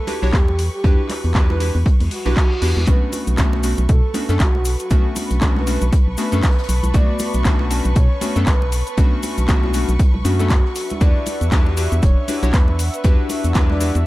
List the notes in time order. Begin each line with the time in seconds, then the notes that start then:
Already playing: A4 B4 C#6
0.07 D4 E4 F#4 G4 B4, closed hi-hat, open hi-hat, muted conga
0.22 B1 D4 E4 F#4 G4 C#5, snare
0.33 E2 G4, kick, snare, clap, closed hi-hat
0.48 muted conga
0.59 closed hi-hat, open hi-hat
0.74 G4
0.84 E2 D4 E4 F#4 G4 B4, kick, closed hi-hat
1.09 clap, closed hi-hat, open hi-hat, muted conga
1.24 E2, closed hi-hat
1.35 E2 D4 E4 F#4 G4 B4, kick, snare, clap, closed hi-hat, low conga
1.49 B4, snare, muted conga, high conga
1.60 D4 E4 F#4 G4 B4, snare, closed hi-hat, open hi-hat
1.75 E2
1.86 kick, closed hi-hat, reverse cymbal
2.00 E2, open hi-hat, high conga
2.11 F#4, snare, closed hi-hat, open hi-hat
2.25 B1 D4 E4 F#4 G4 B4, snare, muted conga
2.36 kick, snare, clap, closed hi-hat
2.50 snare
2.62 E2 D4 E4 F#4 G4 B4, snare, closed hi-hat, open hi-hat
2.77 E2, high conga
2.87 B1 A3 B3 C#4 D4 F#4 B4 A5 B5 C#6, kick, closed hi-hat, cabasa
3.12 closed hi-hat, open hi-hat, muted conga, cabasa
3.27 B1, closed hi-hat, cabasa
3.38 A3 B3 C#4 D4 F#4, kick, snare, clap, closed hi-hat, low conga, cabasa
3.53 snare, muted conga
3.63 A3 B3 C#4 D4 F#4, closed hi-hat, open hi-hat, cabasa
3.78 B1, closed hi-hat, cabasa
3.89 B2 A4, kick, closed hi-hat, cabasa
4.14 A3 B3 C#4 D4 F#4, closed hi-hat, open hi-hat, muted conga, cabasa
4.29 F#2 A3 B3 C#4 D4 A4, snare, closed hi-hat, cabasa
4.40 B1 F#4, kick, snare, clap, closed hi-hat, cabasa
4.55 muted conga
4.65 closed hi-hat, open hi-hat, cabasa
4.79 F#4, closed hi-hat, cabasa
4.90 B1 A3 B3 C#4 D4 F#4, kick, closed hi-hat, cabasa
5.16 closed hi-hat, open hi-hat, muted conga, cabasa
5.30 B1, closed hi-hat, cabasa
5.41 A3 B3 C#4 D4 F#4, kick, snare, clap, closed hi-hat, low conga, cabasa
5.56 B4, snare, high conga
5.67 A3 B3 C#4 D4 F#4, snare, closed hi-hat, open hi-hat, cabasa
5.81 B1, closed hi-hat, cabasa
5.93 kick, closed hi-hat, cabasa
6.07 B1
6.17 A3 B3 C#4 D4 F#4 B4, snare, closed hi-hat, open hi-hat, cabasa
6.32 F#2 A3 B3 C#4 D4 A4, snare, closed hi-hat, muted conga, cabasa
6.43 kick, snare, clap, closed hi-hat, cabasa
6.50 snare, closed hi-hat
6.58 snare, closed hi-hat
6.63 snare, closed hi-hat
6.69 B1, snare, closed hi-hat, open hi-hat, cabasa
6.83 B1, closed hi-hat, high conga, cabasa
6.94 B1 A3 B3 D4 F#4 D5, kick, closed hi-hat, cabasa
7.19 closed hi-hat, open hi-hat, muted conga, cabasa
7.34 B1, closed hi-hat, cabasa
7.45 A3 B3 C#4 D4 F#4, kick, snare, clap, closed hi-hat, low conga, cabasa
7.59 snare, muted conga
7.70 A3 B3 C#4 D4 F#4, closed hi-hat, open hi-hat, cabasa
7.85 B1, closed hi-hat, cabasa
7.96 B2 C#5, kick, closed hi-hat, cabasa
8.21 A3 B3 C#4 D4 F#4, closed hi-hat, open hi-hat, muted conga, cabasa
8.36 F#2 A3 B3 C#4 D4 A4, closed hi-hat, cabasa
8.46 B1 B4, kick, snare, clap, closed hi-hat, cabasa
8.62 muted conga
8.72 closed hi-hat, open hi-hat, cabasa
8.87 B4, closed hi-hat, cabasa
8.97 B1 A3 B3 C#4 D4 F#4, kick, closed hi-hat, cabasa
9.23 closed hi-hat, open hi-hat, muted conga, cabasa
9.38 B1, closed hi-hat, cabasa
9.48 B1 A3 B3 C#4 D4 F#4, kick, snare, clap, closed hi-hat, low conga, cabasa
9.63 F#4, snare, high conga
9.74 A3 B3 C#4 D4 F#4, snare, closed hi-hat, open hi-hat, cabasa
9.89 B1, closed hi-hat, cabasa
9.99 kick, closed hi-hat, cabasa
10.14 B1, high conga
10.24 F#2 A3 B3 C#4 D4 F#4, snare, closed hi-hat, open hi-hat, cabasa
10.39 A3 B3 C#4 D4 A4, snare, closed hi-hat, muted conga, cabasa
10.50 kick, snare, clap, closed hi-hat, cabasa
10.65 snare
10.75 D4 E5 F#5 E6, snare, closed hi-hat, open hi-hat, cabasa
10.90 snare, closed hi-hat, high conga, cabasa
11.01 E2 D4 E4 F#4 G4 B4 D5, kick, closed hi-hat, cabasa
11.26 closed hi-hat, open hi-hat, muted conga, cabasa
11.41 E2, closed hi-hat, cabasa
11.52 E2 D4 E4 F#4 G4 B4, kick, snare, clap, closed hi-hat, low conga, cabasa
11.66 snare, muted conga
11.77 D4 E4 F#4 G4 B4, closed hi-hat, open hi-hat, cabasa
11.92 E2, closed hi-hat, cabasa
12.02 E1 C#5, kick, closed hi-hat, cabasa
12.28 D4 E4 F#4 G4 B4, closed hi-hat, open hi-hat, muted conga, cabasa
12.42 B1 D4 E4 F#4 G4 C#5, snare, closed hi-hat, cabasa
12.53 E2 B4, kick, snare, clap, closed hi-hat, cabasa
12.68 muted conga
12.79 closed hi-hat, open hi-hat, cabasa
12.93 B4, closed hi-hat, cabasa
13.04 E2 D4 E4 F#4 G4 B4, kick, closed hi-hat, cabasa
13.29 closed hi-hat, open hi-hat, muted conga, cabasa
13.44 E2, closed hi-hat, cabasa
13.55 E2 D4 E4 F#4 G4 B4, kick, snare, clap, closed hi-hat, low conga, cabasa
13.70 D5, snare, high conga
13.80 D4 E4 F#4 G4 B4, snare, closed hi-hat, open hi-hat, cabasa
13.95 E2, closed hi-hat, cabasa